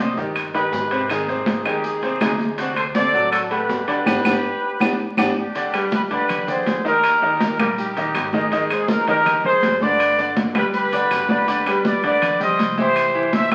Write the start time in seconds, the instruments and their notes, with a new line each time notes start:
Already playing: upright bass C2
0.00 grand piano C3 C4 C5, trumpet section C5 D#5
0.17 upright bass G2, grand piano D#3 D#4 G4, high conga, maracas
0.35 high conga, high timbale, claves, maracas
0.54 grand piano D#3 D#4 G4, trumpet section G4 B4, high conga, high timbale, maracas
0.72 upright bass G#2, high conga, low timbale, maracas
0.91 grand piano C3 C4 C5, high timbale, maracas
1.09 grand piano D#3 D#4 G#4, trumpet section D#4 G#4, high conga, high timbale, claves, maracas
1.28 grand piano C3 C4 C5, high conga, maracas
1.46 high conga, high timbale, low timbale, maracas
1.65 upright bass D#2, grand piano D#3 D#4 G#4, trumpet section D#4 G4, high conga, high timbale, claves, maracas
1.84 trumpet section D#4 G#4, high conga, maracas
2.02 grand piano C3 C4 C5, high conga, high timbale, maracas
2.21 upright bass D2, grand piano C3 D#4 G#4, high conga, high timbale, low timbale, claves, maracas
2.39 high conga, maracas
2.58 grand piano C3 C4 C5, trumpet section D4 F#4, high conga, high timbale, maracas
2.76 trumpet section A4 C5, high conga, high timbale, claves, maracas
2.95 grand piano C3 C4 C5, trumpet section A4 D5, high conga, low timbale, maracas
3.13 upright bass A1, grand piano F#3 F#4 A4, high conga, maracas
3.32 trumpet section F#4 A4, high conga, high timbale, claves, maracas
3.51 grand piano A3 A4 F#5, trumpet section G4 B4, high conga, high timbale, maracas
3.69 upright bass G1, high conga, low timbale, maracas
3.88 grand piano D3 D4 D5, trumpet section G4 B4, high timbale, maracas
4.06 upright bass G1, grand piano B3 D4 G4, high conga, high timbale, claves, maracas
4.25 upright bass G1, grand piano B3 D4 G4, high conga, high timbale, claves, maracas
4.80 upright bass G1, grand piano B3 D4 G4, high conga, high timbale, claves, maracas
5.17 upright bass G1, grand piano B3 D4 G4, high conga, high timbale, claves, maracas
5.37 trumpet section D4 G4
5.55 grand piano D3 D4 D5, high conga, high timbale, maracas
5.73 grand piano G3 G4 B4, high conga, high timbale, claves, maracas
5.92 trumpet section G4 B4, high conga, maracas
6.10 upright bass D2, grand piano D3 D4 D5, trumpet section G4 B4, high conga, high timbale, maracas
6.29 high conga, low conga, high timbale, claves, maracas
6.47 grand piano D3 D5 G5, trumpet section G#4 C5, high conga, low conga, maracas
6.66 upright bass D#2, high conga, high timbale, low timbale, maracas
6.85 grand piano D#3 D#4 D#5, trumpet section G4 A#4, maracas
7.04 high conga, high timbale, claves, maracas
7.22 grand piano D#3 D#4 D#5, high conga
7.40 high conga, high timbale, maracas
7.59 upright bass A#1, grand piano G3 G4 A#4, trumpet section D#4 G4, high conga, high timbale, claves, maracas
7.78 trumpet section D#4 G4, high conga, maracas
7.96 grand piano D#3 D#4 D#5, high conga, high timbale, maracas
8.15 upright bass G#1, high conga, high timbale, low timbale, claves, maracas
8.33 grand piano D#3 D#4 D#5, trumpet section D#4 G#4, high conga, maracas
8.52 grand piano D#3 D#4 D#5, high conga, high timbale, maracas
8.70 grand piano G#3 G#4 C5, high conga, high timbale, claves, maracas
8.88 trumpet section D#4 A#4, high conga, maracas
9.07 upright bass D#2, grand piano D#3 D#4 D#5, trumpet section G4 A#4, high conga, high timbale, maracas
9.26 high conga, low conga, high timbale, claves, maracas
9.45 grand piano G#3 G#4 C5, trumpet section G#4 C5, high conga, low conga
9.62 upright bass G2, high conga, high timbale, low timbale, maracas
9.81 grand piano D3 D4 D5, trumpet section B4 D5, high conga, maracas
9.99 high conga, high timbale, claves, maracas
10.18 grand piano D3 D4 D5, high conga, maracas
10.37 high conga, high timbale, maracas
10.55 upright bass D2, grand piano G3 G4 B4, trumpet section G4 B4, high conga, high timbale, claves, maracas
10.74 trumpet section G4 B4, high conga, maracas
10.92 grand piano D3 D4 D5, high conga, high timbale, maracas
11.10 upright bass G1, high conga, high timbale, low timbale, claves, maracas
11.29 grand piano D3 D4 D5, trumpet section G4 B4, high conga, maracas
11.47 grand piano D3 D4 D5, high conga, high timbale, maracas
11.66 grand piano G3 G4 B4, high conga, high timbale, claves, maracas
11.85 trumpet section B4 D5, high conga, maracas
12.04 upright bass D2, grand piano D3 D4 D5, trumpet section B4 D5, high conga, high timbale, maracas
12.22 high conga, low conga, high timbale, claves, maracas
12.40 grand piano G3 G4, trumpet section C5 D#5, high conga, low conga, maracas
12.59 upright bass C2, high conga, high timbale, maracas
12.77 grand piano E3 E4 E5, trumpet section G4 C5, high conga, maracas
12.96 high conga, high timbale, claves, maracas
13.14 grand piano E3 E4 E5, high conga
13.33 trumpet section C5 E5, high conga, high timbale, maracas
13.51 upright bass C2, grand piano G3 G4, high conga, high timbale, claves, maracas